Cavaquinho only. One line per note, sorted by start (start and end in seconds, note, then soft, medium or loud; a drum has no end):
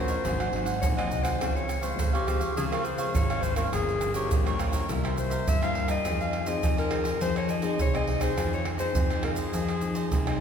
0.08 0.24 A#4 soft
0.08 0.23 C#5 medium
0.08 0.23 D#5 medium
0.24 0.38 D#4 medium
0.24 0.39 G#4 medium
0.24 0.39 C5 medium
0.24 0.39 F#5 medium
0.40 0.52 G#4 medium
0.40 0.52 C5 medium
0.40 0.52 F#5 medium
0.52 muted cavaquinho stroke soft
0.65 0.96 G#4 medium
0.65 0.96 C5 medium
0.65 0.95 F#5 medium
0.97 1.09 G#4 medium
0.97 1.10 C5 medium
0.97 1.11 F#5 medium
1.10 1.24 D#4 soft
1.10 1.24 G#4 soft
1.10 1.23 C5 medium
1.10 1.22 F#5 soft
1.23 1.40 G#4 medium
1.23 1.39 C5 medium
1.23 1.38 F#5 medium
1.40 1.67 F4 soft
1.40 1.67 C5 soft
1.40 1.68 C#5 medium
1.40 1.68 F5 medium
1.68 muted cavaquinho stroke soft
1.81 1.97 C5 medium
1.81 1.97 C#5 medium
1.81 1.96 F5 medium
1.98 2.12 F4 soft
1.98 2.13 C5 soft
1.98 2.13 C#5 soft
1.98 2.12 F5 medium
2.13 2.26 C5 medium
2.13 2.26 C#5 medium
2.13 2.27 F5 medium
2.26 2.41 F4 medium
2.26 2.40 C5 medium
2.26 2.40 C#5 medium
2.26 2.38 F5 medium
2.39 2.56 C5 soft
2.39 2.55 C#5 medium
2.39 2.54 F5 medium
2.57 2.70 F4 medium
2.57 2.71 C5 medium
2.57 2.71 C#5 medium
2.57 2.71 F5 medium
2.72 2.84 C5 medium
2.72 2.84 C#5 medium
2.72 2.85 F5 medium
2.85 muted cavaquinho stroke soft
2.98 3.28 C5 medium
2.98 3.28 C#5 medium
2.98 3.27 F5 medium
3.30 3.42 C5 medium
3.30 3.42 C#5 medium
3.30 3.43 F5 medium
3.42 3.57 F4 soft
3.42 3.57 C5 soft
3.42 3.56 C#5 soft
3.42 3.55 F5 soft
3.56 3.72 C5 medium
3.56 3.71 C#5 medium
3.56 3.71 F5 medium
3.72 3.99 F4 medium
3.72 4.00 A#4 medium
3.72 4.00 C#5 medium
3.72 4.01 G5 medium
4.01 muted cavaquinho stroke soft
4.14 4.30 A#4 soft
4.14 4.29 C#5 medium
4.14 4.29 G5 medium
4.31 4.44 F4 soft
4.31 4.45 A#4 soft
4.31 4.45 C#5 soft
4.31 4.45 G5 medium
4.46 4.58 A#4 medium
4.46 4.59 C#5 medium
4.46 4.59 G5 medium
4.58 4.73 F4 medium
4.58 4.73 A#4 medium
4.58 4.72 C#5 medium
4.58 4.71 G5 medium
4.72 4.88 A#4 medium
4.72 4.88 C#5 medium
4.72 4.87 G5 medium
4.88 5.02 E4 medium
4.88 5.03 A#4 medium
4.88 5.03 C5 medium
4.88 5.02 E5 medium
5.04 5.16 A#4 medium
5.04 5.16 C5 medium
5.04 5.17 E5 medium
5.17 muted cavaquinho stroke soft
5.30 5.60 A#4 medium
5.30 5.60 C5 medium
5.30 5.59 E5 medium
5.61 5.74 A#4 medium
5.61 5.75 C5 medium
5.61 5.75 E5 medium
5.74 5.89 E4 medium
5.74 5.89 A#4 soft
5.74 5.88 C5 medium
5.74 5.87 E5 soft
5.88 6.04 A#4 medium
5.88 6.03 C5 medium
5.88 6.03 E5 medium
6.05 6.31 F4 medium
6.05 6.32 G#4 medium
6.05 6.32 C5 medium
6.05 6.32 D#5 medium
6.33 muted cavaquinho stroke soft
6.46 6.62 G#4 medium
6.46 6.61 C5 medium
6.46 6.61 D#5 medium
6.62 6.76 F4 soft
6.62 6.77 G#4 soft
6.62 6.77 C5 medium
6.62 6.76 D#5 medium
6.77 6.90 G#4 medium
6.77 6.91 C5 medium
6.77 6.91 D#5 medium
6.90 7.05 F4 medium
6.90 7.05 G#4 medium
6.90 7.04 C5 medium
6.90 7.03 D#5 medium
7.04 7.20 G#4 medium
7.04 7.19 C5 medium
7.04 7.19 D#5 medium
7.21 7.34 F4 medium
7.21 7.35 G#4 medium
7.21 7.35 C5 medium
7.21 7.35 D#5 medium
7.36 7.48 G#4 medium
7.36 7.49 C5 medium
7.36 7.49 D#5 medium
7.49 muted cavaquinho stroke soft
7.62 7.93 G#4 medium
7.62 7.92 C5 medium
7.62 7.92 D#5 medium
7.94 8.06 G#4 medium
7.94 8.06 C5 medium
7.94 8.07 D#5 medium
8.06 8.21 F4 soft
8.06 8.21 G#4 soft
8.06 8.20 C5 medium
8.06 8.19 D#5 soft
8.20 8.36 G#4 medium
8.20 8.36 C5 medium
8.20 8.35 D#5 medium
8.37 8.64 F4 medium
8.37 8.64 G#4 medium
8.37 8.65 C5 medium
8.37 8.65 D#5 medium
8.65 muted cavaquinho stroke soft
8.78 8.94 G#4 medium
8.78 8.94 C5 soft
8.78 8.93 D#5 medium
8.95 9.09 F4 soft
8.95 9.09 G#4 soft
8.95 9.10 C5 soft
8.95 9.09 D#5 medium
9.10 9.23 G#4 medium
9.10 9.23 C5 medium
9.10 9.24 D#5 medium
9.23 9.37 F4 medium
9.23 9.37 G#4 medium
9.23 9.36 C5 medium
9.23 9.35 D#5 medium
9.36 9.52 G#4 soft
9.36 9.52 C5 medium
9.36 9.51 D#5 medium
9.53 9.67 F4 medium
9.53 9.67 G#4 medium
9.53 9.68 C5 medium
9.53 9.68 D#5 medium
9.69 9.81 G#4 medium
9.69 9.81 C5 medium
9.69 9.81 D#5 medium
9.82 muted cavaquinho stroke soft
9.95 10.25 G#4 medium
9.95 10.25 C5 medium
9.95 10.24 D#5 medium
10.27 10.40 G#4 medium
10.27 10.40 C5 medium
10.27 10.40 D#5 medium